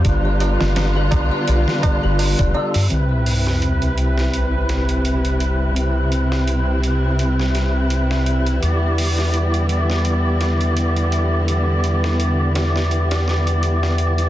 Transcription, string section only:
Already playing: G3
0.05 D3 B3 F4
2.90 C3 G3 E4 B4
5.76 C4
8.62 D3 B3

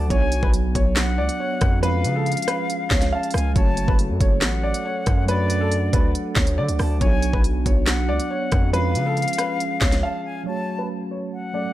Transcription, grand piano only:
0.10 C#5
0.43 B4
0.75 C#5
1.18 D5
1.40 C#5
1.83 B4
2.16 A4
2.48 B4
2.91 C#5
3.12 F5
3.56 C#5
3.88 B4
4.21 C#5
4.63 D5
4.85 C#5
5.29 B4
5.61 A4
5.93 B4
6.37 C#5
6.58 D5
7.01 C#5
7.33 B4
7.66 C#5
8.09 D5
8.31 C#5
8.73 B4
9.06 A4
9.38 B4
9.81 C#5
10.03 F5
10.46 C#5
10.79 B4
11.11 C#5
11.54 D5

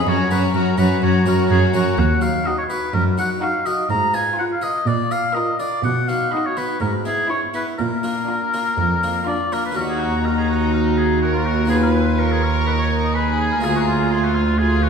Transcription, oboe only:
0.08 C#5
0.31 B4
0.55 A#4
0.78 B4
1.03 C#5
1.28 A#4
1.51 G#4
1.75 F#4
1.99 F#5
2.22 F5
2.46 D#5
2.58 C#5
2.69 B4
2.94 A#4
3.19 F#5
3.42 F5
3.66 D#5
3.90 A#5
4.15 G#5
4.39 F#5
4.52 F5
4.63 D#5
4.87 D5
5.12 F5
5.34 D#5
5.59 D5
5.84 F#5
6.08 F5
6.32 D#5
6.46 C#5
6.58 B4
6.81 A#4
7.06 G#4
7.30 C#5
7.55 B4
7.79 A#4
9.27 D5
9.53 A#4
9.65 B4
9.76 A#4
9.89 G#4
10.00 F#4
10.25 A#4
10.38 G#4
10.49 F#4
10.74 A#4
10.97 G#4
11.21 F#4
11.34 F4
11.46 F#4
11.70 G#4
11.83 A#4
11.94 B4
12.19 A#4
12.31 G#4
12.43 A#4
12.67 B4
12.79 C#5
13.04 D#5
13.15 B4
13.39 G#4
13.52 A#4
13.64 G#4
13.76 F#4
13.87 F4
14.11 G#4
14.24 F#4
14.35 F4
14.59 G#4
14.82 F#4

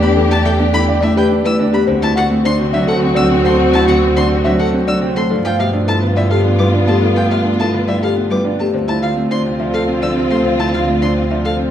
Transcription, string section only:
Already playing: D4 G4
1.88 C4 F#4
5.31 B3 F4
8.74 C4 F4

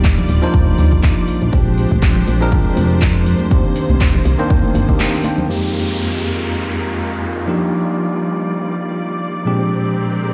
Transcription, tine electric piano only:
Already playing: F3 A#3 D4 D#4 G4
0.42 F3 A#3 D4 D#4 C5
1.53 F3 G#3 C4 D4 G4
2.40 F3 G#3 C4 D4 A#4
3.50 D#3 A#3 C4 D4 G4
4.39 D#3 A#3 C4 D4 C5
4.88 D#3 A#3 C4 D4 G4
5.24 D#3 A#3 C4 D4 C5
5.48 F2 G#3 A#3 C4 D#4 G4
7.47 F3 A#3 D4 D#4 G4
9.45 A#2 F3 G#3 C4 D4 G4

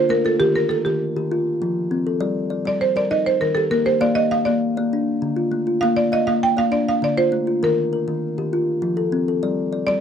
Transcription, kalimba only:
Already playing: F4
0.09 A3
0.25 F4
0.40 D#3 A#4
0.71 A#4
0.86 D#3
1.16 D#3 G4
1.31 F4
1.62 F3
1.91 C4
2.07 A4
2.21 G3 D5
2.50 D5
2.65 G3
2.96 G3 A#4
3.11 D#4
3.41 D#3
3.57 G4
3.71 A#3
3.86 G4
4.01 A#3 F5
4.32 F5
4.46 A#3
4.77 A#3 D5
4.93 D4
5.22 D3
5.36 F4
5.51 A3
5.67 F4
5.83 A#3 F5
6.12 F5
6.27 A#3
6.57 A#3 D5
6.72 D4
7.02 D3
7.17 F4
7.32 A3
7.47 F4
7.63 D#3 A#4
7.93 A#4
8.08 D#3
8.38 D#3 G4
8.53 F4
8.82 F3
8.97 A4
9.12 C4
9.28 A4
9.43 G3 D5
9.73 D5
9.88 G3

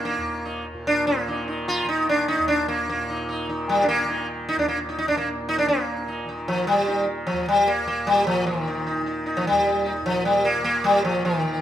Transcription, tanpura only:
Already playing: D#2 A#2 D#3
0.18 D#2
0.74 A#2
1.28 D#3
1.83 D#3
2.38 D#2
2.93 A#2
3.48 D#3
4.02 D#3
4.56 D#2
5.11 A#2
5.68 A#2
6.24 D#3
6.78 D#3
7.32 D#2
7.86 A#2
8.41 D#3
8.95 D#3
9.50 D#2
10.02 A#2
10.57 D#3
11.09 D#3

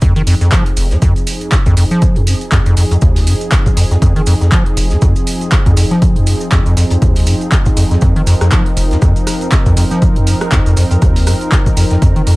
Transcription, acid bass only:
0.02 F2
0.16 D#3
0.27 F2
0.41 F2
0.52 F3
0.77 F1
0.91 F2
1.02 F2
1.66 F2
1.77 F2
1.91 F3
2.16 F2
2.27 F#2
2.52 F2
2.66 F2
2.77 F2
2.91 F2
3.02 D#2
3.27 F#2
3.77 F2
3.91 F2
4.02 F2
4.16 D#3
4.27 F2
4.41 F2
4.52 F3
4.77 F1
4.91 F2
5.02 F2
5.66 F2
5.77 F2
5.91 F3
6.16 F2
6.27 F#2
6.52 F2
6.66 F2
6.77 F2
6.91 F2
7.02 D#2
7.27 F#2
7.77 F2
7.91 F2
8.02 F2
8.16 D#3
8.27 F2
8.41 F2
8.52 F3
8.77 F1
8.91 F2
9.02 F2
9.66 F2
9.77 F2
9.91 F3
10.16 F2
10.27 F#2
10.52 F2
10.66 F2
10.77 F2
10.91 F2
11.02 D#2
11.27 F#2
11.77 F2
11.91 F2
12.02 F2
12.16 D#3
12.27 F2

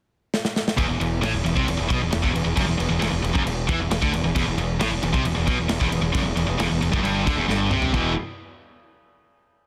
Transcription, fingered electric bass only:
0.79 E1
0.89 E1
1.00 E1
1.23 A1
1.34 E1
1.45 E1
1.57 C2
1.67 E1
1.79 E1
1.90 B1
2.02 E1
2.14 E1
2.24 E1
2.35 E1
2.45 E1
2.57 F#1
2.68 E1
2.80 E1
2.90 E1
3.02 E1
3.13 E1
3.23 E1
3.35 F#1
3.46 E1
3.69 E2
3.80 E1
3.91 E1
4.03 D2
4.13 E1
4.24 E1
4.36 E1
4.47 E1
4.57 E1
4.81 A1
4.91 E1
5.02 E1
5.14 C2
5.25 E1
5.37 E1
5.48 B1
5.59 E1
5.70 E1
5.81 E1
5.92 E1
6.01 E1
6.15 F#1
6.25 E1
6.37 E1
6.48 E1
6.60 E1
6.72 E1
6.83 E1
6.93 F#1
7.04 G1
7.27 D2
7.36 E1
7.48 G1
7.70 C2
7.94 E1

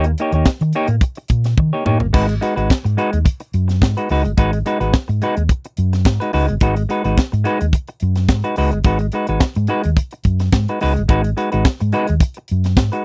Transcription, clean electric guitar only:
Already playing: A#3
0.07 muted clean electric guitar stroke
0.20 A#3 D#4 G4 C#5
0.34 A#3 D#4 G4 C#5
0.62 muted clean electric guitar stroke
0.75 A#3 D#4 G4 C#5
0.89 muted clean electric guitar stroke
1.02 muted clean electric guitar stroke
1.17 muted clean electric guitar stroke
1.46 muted clean electric guitar stroke
1.58 muted clean electric guitar stroke
1.73 A#3 D#4 G4 C#5
1.85 A#3 D#4 G4 C#5
2.01 muted clean electric guitar stroke
2.13 G#3 D#4 F#4 B4
2.29 muted clean electric guitar stroke
2.41 G#3 D#4 F#4 B4
2.56 G#3 D#4 F#4 B4
2.85 muted clean electric guitar stroke
2.97 G#3 D#4 F#4 B4
3.13 muted clean electric guitar stroke
3.25 muted clean electric guitar stroke
3.40 muted clean electric guitar stroke
3.68 muted clean electric guitar stroke
3.82 muted clean electric guitar stroke
3.97 G#3 D#4 F#4 B4
4.11 G#3 D#4 F#4 B4
4.25 muted clean electric guitar stroke
4.37 G#3 D#4 F#4 B4
4.53 muted clean electric guitar stroke
4.66 G#3 D#4 F#4 B4
4.80 G#3 D#4 F#4 B4
5.08 muted clean electric guitar stroke
5.22 G#3 D#4 F#4 B4
5.37 muted clean electric guitar stroke
5.51 muted clean electric guitar stroke
5.66 muted clean electric guitar stroke
5.93 muted clean electric guitar stroke
6.06 muted clean electric guitar stroke
6.20 G#3 D#4 F#4 B4
6.33 G#3 D#4 F#4 B4
6.48 muted clean electric guitar stroke
6.62 G#3 D#4 F#4 B4
6.77 muted clean electric guitar stroke
6.89 G#3 D#4 F#4 B4
7.04 G#3 D#4 F#4 B4
7.32 muted clean electric guitar stroke
7.44 G#3 D#4 F#4 B4
7.61 muted clean electric guitar stroke
7.74 muted clean electric guitar stroke
7.89 muted clean electric guitar stroke
8.16 muted clean electric guitar stroke
8.29 muted clean electric guitar stroke
8.44 G#3 D#4 F#4 B4
8.57 G#3 D#4 F#4 B4
8.73 muted clean electric guitar stroke
8.85 G#3 D#4 F#4 B4
9.01 muted clean electric guitar stroke
9.13 G#3 D#4 F#4 B4
9.29 G#3 D#4 F#4 B4
9.56 muted clean electric guitar stroke
9.68 G#3 D#4 F#4 B4
9.84 muted clean electric guitar stroke
9.97 muted clean electric guitar stroke
10.13 muted clean electric guitar stroke
10.40 muted clean electric guitar stroke
10.54 muted clean electric guitar stroke
10.69 G#3 D#4 F#4 B4
10.81 G#3 D#4 F#4 B4
10.95 muted clean electric guitar stroke
11.09 G#3 D#4 F#4 B4
11.24 muted clean electric guitar stroke
11.37 G#3 D#4 F#4 B4
11.52 G#3 D#4 F#4 B4
11.80 muted clean electric guitar stroke
11.93 G#3 D#4 F#4 B4
12.09 muted clean electric guitar stroke
12.22 muted clean electric guitar stroke
12.37 muted clean electric guitar stroke
12.66 muted clean electric guitar stroke
12.78 muted clean electric guitar stroke
12.92 G#3 D#4 F#4 B4

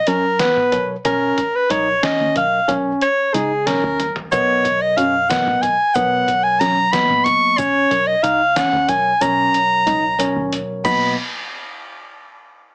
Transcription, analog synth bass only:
0.07 F#2
0.56 A#1
1.05 B1
1.70 C#2
2.20 D#2
2.69 B1
3.34 C#2
3.83 D#2
4.32 B1
4.98 F#2
5.47 A#1
5.96 B1
6.60 F#2
7.09 A#1
7.59 B1
8.23 C#2
8.73 D#2
9.21 B1
9.87 C#2
10.36 D#2
10.85 B1

